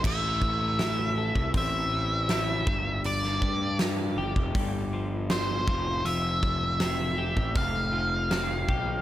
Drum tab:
CC |x---------------|----------------|----------------|
HH |----o---o---o---|o---o---o---o---|o---o---o---o---|
SD |----o-------o---|-o--o-------o---|----o-------o---|
BD |o-o----oo-----o-|--o----oo-----o-|--o----oo-----o-|